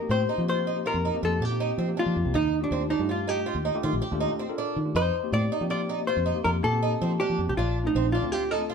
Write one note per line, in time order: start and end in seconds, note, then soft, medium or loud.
0.00 0.32 A#3 medium
0.00 0.32 C4 medium
0.00 0.32 D#4 medium
0.00 0.32 G4 medium
0.00 0.12 A#4 loud
0.09 0.25 A2 medium
0.09 0.20 C4 medium
0.09 0.48 C5 loud
0.29 0.39 D#4 medium
0.38 0.84 F3 medium
0.38 0.69 A#3 medium
0.38 0.70 C4 medium
0.38 0.70 D#4 medium
0.38 0.70 G4 medium
0.48 0.58 F4 medium
0.48 0.87 C5 medium
0.67 0.77 D#4 medium
0.76 1.07 A#3 medium
0.76 1.07 C4 medium
0.76 1.07 D#4 medium
0.76 1.07 G4 medium
0.86 0.95 F4 medium
0.86 1.21 A#4 medium
0.94 1.10 F2 medium
1.05 1.14 D#4 medium
1.14 1.44 A#3 medium
1.14 1.44 C4 medium
1.14 1.45 D#4 medium
1.14 1.44 G4 medium
1.23 1.38 F2 medium
1.23 1.32 F4 medium
1.23 1.45 A4 medium
1.40 1.71 A#2 medium
1.40 1.51 G4 medium
1.45 1.99 G4 medium
1.51 1.81 A#3 medium
1.51 1.81 C4 medium
1.51 1.81 D#4 medium
1.51 1.81 G4 medium
1.60 1.70 D#4 medium
1.78 1.93 F3 medium
1.78 1.88 C4 medium
1.87 2.18 A#3 medium
1.87 2.19 C4 medium
1.87 2.19 D#4 medium
1.87 2.19 G4 medium
1.97 2.16 D4 medium
1.97 2.37 F4 medium
2.06 2.14 F3 medium
2.16 2.24 F2 medium
2.24 2.33 C2 medium
2.24 2.34 A#3 medium
2.24 2.34 C4 medium
2.24 2.34 D#4 medium
2.24 2.34 G4 medium
2.34 2.65 D#2 loud
2.34 2.53 D#4 medium
2.34 2.63 D#4 medium
2.61 2.93 A3 medium
2.61 2.92 D4 medium
2.61 2.89 D4 medium
2.61 2.92 F4 medium
2.61 2.93 G4 medium
2.71 2.94 D#2 loud
2.71 2.82 C4 medium
2.90 3.00 D4 medium
2.90 3.09 D#4 medium
2.99 3.45 G2 medium
2.99 3.31 A3 medium
2.99 3.30 D4 medium
2.99 3.31 F4 medium
2.99 3.31 G4 medium
3.09 3.19 F4 medium
3.09 3.29 F4 medium
3.28 3.37 D#4 medium
3.28 4.40 G4 medium
3.37 3.68 A3 medium
3.37 3.68 D4 soft
3.37 3.68 F4 medium
3.37 3.68 G4 medium
3.46 3.56 F4 medium
3.55 3.70 D#2 medium
3.65 3.75 D#4 medium
3.74 4.05 A3 medium
3.74 4.05 D4 medium
3.74 4.05 F4 medium
3.74 4.05 G4 loud
3.83 3.91 D#3 medium
3.83 3.93 F4 medium
3.93 4.00 A#1 medium
4.02 4.12 G4 medium
4.11 4.27 D#2 medium
4.11 4.42 A3 medium
4.11 4.42 D4 medium
4.11 4.42 F4 medium
4.11 4.43 G4 loud
4.20 4.30 D#4 medium
4.39 4.49 C4 medium
4.49 4.80 D4 medium
4.49 4.80 F4 medium
4.49 4.80 A4 medium
4.49 4.80 A#4 medium
4.58 4.77 D4 medium
4.76 4.92 D#3 medium
4.85 4.95 A3 medium
4.85 4.95 D4 medium
4.85 4.95 F4 medium
4.85 4.95 G4 medium
4.95 5.10 F2 loud
4.95 5.15 D#4 medium
4.95 5.33 C5 loud
5.23 5.54 A#3 medium
5.23 5.54 C4 medium
5.23 5.54 D#4 medium
5.23 5.54 G4 medium
5.32 5.48 A2 loud
5.32 5.43 C4 medium
5.32 5.70 D5 loud
5.52 5.61 D#4 medium
5.61 6.07 F3 medium
5.61 5.92 A#3 medium
5.61 5.92 C4 medium
5.61 5.92 D#4 medium
5.61 5.92 G4 medium
5.70 5.80 F4 medium
5.70 6.07 D5 medium
5.89 5.99 D#4 medium
5.98 6.29 A#3 medium
5.98 6.29 C4 medium
5.98 6.29 D#4 soft
5.98 6.29 G4 medium
6.07 6.18 F4 medium
6.07 6.44 C5 medium
6.17 6.32 F2 medium
6.26 6.35 D#4 medium
6.34 6.66 A#3 medium
6.34 6.66 C4 medium
6.34 6.66 D#4 medium
6.34 6.66 G4 medium
6.44 6.60 F2 medium
6.44 6.55 F4 medium
6.44 6.49 A#4 medium
6.64 6.94 A#2 medium
6.64 6.73 G4 medium
6.64 7.21 A4 medium
6.72 7.03 A#3 medium
6.72 7.03 C4 medium
6.72 7.03 D#4 medium
6.72 7.03 G4 medium
6.83 6.92 D#4 medium
7.01 7.16 F3 medium
7.01 7.11 C4 medium
7.08 7.40 A#3 medium
7.08 7.40 C4 medium
7.08 7.40 D#4 medium
7.08 7.40 G4 medium
7.20 7.40 D4 medium
7.20 7.48 G4 medium
7.30 7.37 F3 medium
7.39 7.46 F2 medium
7.47 7.56 C2 medium
7.47 7.57 A#3 medium
7.47 7.56 C4 medium
7.47 7.57 D#4 medium
7.47 7.57 G4 medium
7.47 7.56 G4 medium
7.57 7.88 A#1 loud
7.57 7.77 D4 medium
7.57 7.86 F4 medium
7.83 8.15 A3 medium
7.83 8.15 C4 medium
7.83 8.15 D4 medium
7.83 8.14 D#4 medium
7.83 8.15 F4 medium
7.95 8.17 A#1 loud
7.95 8.05 C4 medium
8.12 8.24 D4 medium
8.12 8.32 F4 medium
8.21 8.68 D2 medium
8.21 8.52 A3 medium
8.21 8.52 C4 medium
8.21 8.53 D4 medium
8.21 8.53 F4 medium
8.32 8.42 F4 medium
8.32 8.51 G4 medium
8.51 8.61 D#4 medium
8.51 8.74 A4 medium
8.58 8.74 A3 medium
8.58 8.74 C4 medium
8.58 8.74 D4 medium
8.58 8.74 F4 medium
8.70 8.74 F4 medium